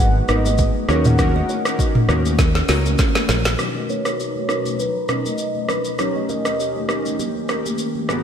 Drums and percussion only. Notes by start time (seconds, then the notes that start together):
0.28 cross-stick, high conga, shaker
0.45 high conga, shaker
0.58 kick, shaker
0.75 high conga
0.89 cross-stick, low conga, shaker
1.05 mid tom, shaker
1.19 kick, cross-stick, low conga, shaker
1.35 high conga
1.49 high conga, shaker
1.65 cross-stick, shaker
1.79 kick, shaker
1.95 mid tom, high conga
2.09 cross-stick, shaker
2.25 high conga, shaker
2.39 kick, snare, low conga, shaker
2.55 snare
2.68 snare, open hi-hat, high conga, shaker
2.86 high conga, shaker
2.98 kick, snare, shaker
3.15 snare, high conga
3.29 snare, low conga, shaker
3.45 snare, shaker
3.59 cross-stick, low conga, shaker
3.75 high conga
3.89 high conga, shaker
4.05 cross-stick, shaker
4.20 shaker
4.36 high conga
4.49 cross-stick, shaker
4.66 high conga, shaker
4.79 low conga, shaker
5.08 cross-stick, high conga, shaker
5.26 high conga, shaker
5.38 shaker
5.55 high conga
5.69 cross-stick, low conga, shaker
5.84 shaker
5.99 cross-stick, low conga, shaker
6.15 high conga
6.29 high conga, shaker
6.45 cross-stick, shaker
6.60 shaker
6.76 high conga
6.89 cross-stick, shaker
7.06 high conga, shaker
7.19 low conga, shaker
7.49 cross-stick, high conga, shaker
7.66 high conga, shaker
7.78 shaker
7.95 high conga
8.09 cross-stick, low conga, shaker